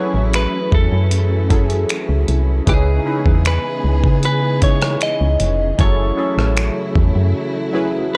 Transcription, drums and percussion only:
0.33 finger snap loud
0.33 closed hi-hat medium
0.72 kick loud
1.11 closed hi-hat medium
1.50 kick medium
1.50 closed hi-hat medium
1.70 closed hi-hat soft
1.89 finger snap loud
1.89 closed hi-hat medium
2.28 closed hi-hat medium
2.67 kick loud
2.67 closed hi-hat medium
3.26 kick medium
3.45 finger snap loud
3.45 closed hi-hat medium
4.04 kick medium
4.23 closed hi-hat medium
4.62 kick medium
4.62 closed hi-hat medium
4.82 cross-stick loud
4.82 closed hi-hat soft
5.01 finger snap loud
5.01 closed hi-hat medium
5.40 closed hi-hat medium
5.79 kick loud
5.79 closed hi-hat medium
6.39 cross-stick medium
6.57 finger snap loud
6.57 closed hi-hat medium
6.96 kick loud

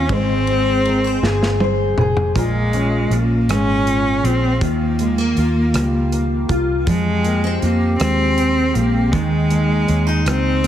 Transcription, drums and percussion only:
0.09 kick loud
0.09 ride medium
0.47 ride soft
0.85 ride soft
1.24 snare medium
1.43 snare medium
1.60 high tom medium
1.98 mid tom loud
2.17 floor tom loud
2.36 kick medium
2.36 closed hi-hat medium
2.73 closed hi-hat soft
3.11 closed hi-hat soft
3.49 cross-stick medium
3.49 closed hi-hat medium
3.87 closed hi-hat soft
4.25 closed hi-hat soft
4.61 kick medium
4.61 closed hi-hat medium
4.99 closed hi-hat soft
5.37 closed hi-hat soft
5.74 cross-stick medium
5.74 closed hi-hat medium
6.12 closed hi-hat medium
6.49 kick medium
6.49 closed hi-hat soft
6.87 kick medium
6.87 closed hi-hat medium
7.25 closed hi-hat soft
7.62 closed hi-hat soft
8.00 cross-stick medium
8.00 closed hi-hat medium
8.38 closed hi-hat medium
8.75 closed hi-hat soft
9.13 kick medium
9.13 closed hi-hat medium
9.50 closed hi-hat soft
9.88 closed hi-hat soft
10.26 cross-stick medium
10.26 closed hi-hat medium

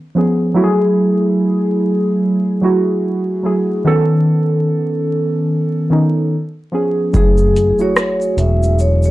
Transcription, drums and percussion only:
7.14 kick loud
7.14 shaker medium
7.37 shaker soft
7.56 closed hi-hat medium
7.56 shaker soft
7.79 shaker medium
7.96 cross-stick loud
7.96 shaker medium
8.21 shaker soft
8.38 closed hi-hat medium
8.38 shaker soft
8.63 shaker medium
8.63 shaker soft
8.79 shaker medium
9.02 shaker medium
9.02 shaker soft

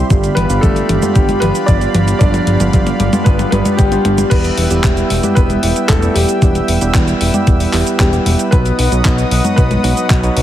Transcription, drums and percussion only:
0.10 kick loud
0.10 closed hi-hat medium
0.10 mid tom medium
0.10 cabasa soft
0.24 closed hi-hat soft
0.24 cabasa soft
0.37 closed hi-hat medium
0.37 mid tom medium
0.50 closed hi-hat soft
0.50 cabasa medium
0.63 kick loud
0.63 closed hi-hat medium
0.63 mid tom medium
0.63 cabasa soft
0.76 closed hi-hat soft
0.76 cabasa soft
0.89 closed hi-hat medium
0.89 mid tom medium
1.02 closed hi-hat soft
1.02 high conga medium
1.02 cabasa medium
1.16 kick loud
1.16 closed hi-hat medium
1.16 mid tom medium
1.16 cabasa soft
1.29 closed hi-hat soft
1.29 high conga medium
1.29 cabasa soft
1.42 closed hi-hat loud
1.42 mid tom medium
1.55 closed hi-hat soft
1.55 cabasa medium
1.68 kick loud
1.68 closed hi-hat medium
1.68 mid tom medium
1.68 cabasa soft
1.81 closed hi-hat soft
1.81 cabasa soft
1.95 closed hi-hat loud
1.95 mid tom medium
2.08 closed hi-hat soft
2.08 cabasa medium
2.21 kick loud
2.21 closed hi-hat medium
2.21 mid tom medium
2.21 cabasa soft
2.34 closed hi-hat soft
2.34 mid tom medium
2.34 cabasa soft
2.47 closed hi-hat medium
2.47 mid tom medium
2.60 closed hi-hat soft
2.60 mid tom medium
2.60 cabasa medium
2.73 kick loud
2.73 closed hi-hat medium
2.73 mid tom medium
2.73 cabasa soft
2.87 closed hi-hat soft
2.87 mid tom medium
2.87 cabasa soft
3.00 closed hi-hat medium
3.00 mid tom medium
3.13 closed hi-hat soft
3.13 mid tom medium
3.13 high conga medium
3.13 cabasa medium
3.26 kick loud
3.26 closed hi-hat medium
3.26 mid tom loud
3.26 cabasa soft
3.39 closed hi-hat soft
3.39 mid tom medium
3.39 cabasa soft
3.52 closed hi-hat medium
3.52 mid tom loud
3.66 closed hi-hat soft
3.66 mid tom medium
3.66 high conga medium
3.66 cabasa medium
3.79 kick loud
3.79 closed hi-hat medium
3.79 mid tom loud
3.79 cabasa soft
3.92 closed hi-hat soft
3.92 mid tom medium
3.92 cabasa soft
4.05 closed hi-hat medium
4.05 mid tom loud
4.18 closed hi-hat soft
4.18 mid tom medium
4.18 cabasa medium
4.31 kick loud
4.31 closed hi-hat medium
4.31 crash medium
4.31 cabasa soft
4.44 closed hi-hat soft
4.44 cabasa soft
4.57 open hi-hat loud
4.71 closed hi-hat soft
4.71 cabasa medium
4.84 kick loud
4.84 clap loud
4.84 closed hi-hat medium
4.84 cabasa soft
4.97 closed hi-hat soft
4.97 cabasa soft
5.10 open hi-hat loud
5.23 closed hi-hat soft
5.23 high conga medium
5.23 cabasa medium
5.37 kick loud
5.37 closed hi-hat medium
5.37 cabasa soft
5.50 closed hi-hat soft
5.50 high conga medium
5.50 cabasa soft
5.63 open hi-hat loud
5.76 closed hi-hat soft
5.76 cabasa medium
5.89 kick loud
5.89 clap loud
5.89 closed hi-hat medium
5.89 cabasa soft
6.02 closed hi-hat soft
6.02 cabasa soft
6.16 open hi-hat loud
6.29 closed hi-hat soft
6.29 cabasa medium
6.42 kick loud
6.42 closed hi-hat medium
6.42 cabasa soft
6.55 closed hi-hat soft
6.55 cabasa soft
6.68 open hi-hat loud
6.81 closed hi-hat soft
6.81 cabasa medium
6.95 kick loud
6.95 clap loud
6.95 closed hi-hat medium
6.95 cabasa soft
7.08 closed hi-hat soft
7.08 cabasa soft
7.21 open hi-hat loud
7.34 closed hi-hat soft
7.34 high conga medium
7.34 cabasa medium
7.47 kick loud
7.47 closed hi-hat medium
7.47 cabasa soft
7.60 open hi-hat medium
7.60 cabasa soft
7.73 clap medium
7.73 open hi-hat loud
7.87 closed hi-hat soft
7.87 cabasa medium
8.00 kick loud
8.00 clap loud
8.00 closed hi-hat medium
8.00 cabasa soft
8.13 closed hi-hat soft
8.13 cabasa soft
8.26 open hi-hat loud
8.39 closed hi-hat soft
8.39 cabasa medium
8.52 kick loud
8.52 closed hi-hat medium
8.52 cabasa soft
8.66 closed hi-hat soft
8.66 cabasa soft
8.79 open hi-hat loud
8.92 closed hi-hat soft
8.92 cabasa medium
9.05 kick loud
9.05 clap loud
9.05 closed hi-hat medium
9.05 cabasa soft
9.18 closed hi-hat soft
9.18 cabasa soft
9.31 open hi-hat loud
9.45 closed hi-hat soft
9.45 high conga medium
9.45 cabasa medium
9.58 kick loud
9.58 closed hi-hat medium
9.58 cabasa soft
9.71 closed hi-hat soft
9.71 high conga medium
9.71 cabasa soft
9.84 open hi-hat loud
9.97 closed hi-hat soft
9.97 cabasa medium
10.10 kick loud
10.10 clap loud
10.10 closed hi-hat medium
10.10 cabasa soft
10.23 closed hi-hat soft
10.23 cabasa soft
10.37 open hi-hat loud

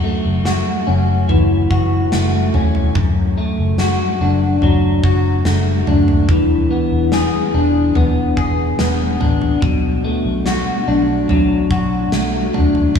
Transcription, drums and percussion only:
0.45 snare medium
1.29 floor tom medium
1.71 kick medium
2.12 snare loud
2.54 floor tom medium
2.75 floor tom medium
2.95 kick loud
2.95 floor tom medium
3.78 snare medium
4.62 floor tom medium
5.04 kick medium
5.45 snare loud
5.87 floor tom medium
6.08 floor tom medium
6.29 kick medium
6.29 floor tom loud
7.12 snare medium
7.95 floor tom medium
8.37 kick medium
8.79 snare loud
9.21 floor tom medium
9.42 floor tom medium
9.62 kick loud
9.62 floor tom loud
10.46 snare medium
11.29 floor tom medium
11.71 kick medium
12.12 snare loud
12.54 floor tom medium
12.75 floor tom medium
12.95 kick loud
12.95 floor tom medium

